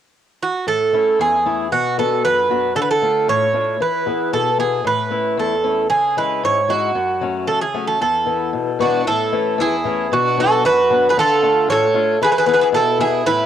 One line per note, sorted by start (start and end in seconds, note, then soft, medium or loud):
0.43 0.68 F#4 medium
0.67 1.18 A2 medium
0.67 1.20 A4 medium
0.93 1.35 A3 soft
0.93 1.35 C#4 soft
0.93 1.35 E4 soft
1.19 1.70 E2 medium
1.19 1.69 G#4 medium
1.46 1.66 A3 soft
1.46 1.67 C#4 soft
1.46 1.67 E4 medium
1.72 2.22 B2 medium
1.72 1.99 F#4 medium
1.98 2.40 B3 soft
1.98 2.40 D4 soft
1.98 2.40 F#4 soft
1.98 2.23 A4 medium
2.25 2.75 F#2 medium
2.25 2.73 B4 medium
2.49 2.71 B3 soft
2.49 2.71 D4 soft
2.49 2.71 F#4 medium
2.75 3.27 D3 medium
2.75 2.81 A4 medium
2.82 2.89 B4 medium
2.91 3.29 A4 medium
3.02 3.44 A3 soft
3.02 3.45 D4 soft
3.02 3.45 F4 medium
3.28 3.79 A2 medium
3.28 3.82 C#5 loud
3.53 3.75 A3 soft
3.53 3.75 D4 soft
3.53 3.76 F4 soft
3.80 4.32 E3 medium
3.80 4.30 B4 medium
4.06 4.49 B3 soft
4.06 4.49 E4 soft
4.06 4.49 G#4 soft
4.33 4.84 B2 medium
4.33 4.59 A4 medium
4.58 4.80 B3 soft
4.58 4.80 E4 soft
4.58 4.81 G#4 soft
4.58 4.86 G#4 medium
4.84 5.36 A2 medium
4.84 5.39 B4 loud
5.10 5.53 A3 soft
5.10 5.54 C#4 soft
5.10 5.54 E4 soft
5.37 5.89 E2 medium
5.37 5.88 A4 medium
5.64 5.85 A3 soft
5.64 5.85 C#4 soft
5.64 5.86 E4 soft
5.90 6.42 C#3 medium
5.90 6.15 G#4 medium
6.17 6.59 G#3 soft
6.17 6.59 C#4 soft
6.17 6.59 E4 soft
6.17 6.42 B4 medium
6.43 6.94 G#2 medium
6.43 6.71 C#5 medium
6.68 6.90 G#3 soft
6.68 6.90 C#4 soft
6.68 6.90 E4 medium
6.68 7.45 F#4 medium
6.95 7.47 F#2 medium
7.21 7.64 F#3 soft
7.21 7.64 A3 soft
7.21 7.65 C#4 soft
7.48 7.99 C#3 medium
7.48 7.60 A4 medium
7.62 7.86 G#4 medium
7.74 7.96 F#3 soft
7.74 7.96 A3 soft
7.74 7.96 C#4 soft
7.88 8.00 A4 medium
8.01 8.52 E2 medium
8.01 8.76 A4 medium
8.26 8.69 E3 soft
8.26 8.69 B3 medium
8.53 9.04 B2 medium
8.79 9.01 E3 soft
8.79 9.01 G#3 soft
8.79 9.01 B3 medium
8.79 9.06 D4 medium
8.79 9.05 F#4 medium
9.07 9.57 A2 medium
9.07 9.56 E4 medium
9.07 9.61 A4 medium
9.32 9.75 E3 soft
9.32 9.74 A3 soft
9.32 9.75 C#4 soft
9.58 10.09 E2 medium
9.58 10.08 E4 medium
9.58 10.14 G#4 medium
9.84 10.06 E3 soft
9.84 10.06 A3 soft
9.84 10.06 C#4 medium
10.12 10.62 B2 medium
10.12 10.37 D4 medium
10.12 10.39 F#4 medium
10.37 10.79 F#3 soft
10.37 10.80 B3 soft
10.37 10.80 D4 medium
10.37 10.63 F#4 medium
10.37 10.66 A4 medium
10.65 11.15 F#2 medium
10.65 11.07 F#4 medium
10.65 11.09 B4 medium
10.90 11.11 F#3 soft
10.90 11.11 B3 soft
10.90 11.12 D4 medium
11.09 11.16 G#4 medium
11.09 11.17 B4 medium
11.17 11.68 D3 medium
11.17 11.67 F4 medium
11.17 11.70 A4 loud
11.43 11.85 A3 soft
11.43 11.85 D4 soft
11.43 11.85 F4 medium
11.69 12.20 A2 medium
11.69 12.19 A4 medium
11.69 12.18 C#5 loud
11.94 12.16 A3 soft
11.94 12.16 D4 soft
11.94 12.16 F4 medium
12.22 12.72 E3 medium
12.22 12.30 G#4 medium
12.22 12.29 B4 medium
12.32 12.38 G#4 medium
12.32 12.37 B4 medium
12.38 12.45 G#4 medium
12.38 12.44 B4 medium
12.46 12.89 B3 soft
12.46 12.89 E4 soft
12.46 12.90 G#4 soft
12.46 12.53 G#4 medium
12.46 12.52 B4 medium
12.54 12.60 G#4 medium
12.54 12.60 B4 medium
12.62 12.68 G#4 medium
12.62 12.67 B4 medium
12.73 13.24 B2 medium
12.73 13.00 E4 medium
12.73 13.00 A4 medium
12.99 13.20 B3 soft
12.99 13.21 E4 soft
12.99 13.25 E4 medium
12.99 13.21 G#4 soft
12.99 13.25 G#4 medium
13.26 13.46 A2 medium
13.26 13.46 E4 medium
13.26 13.46 B4 loud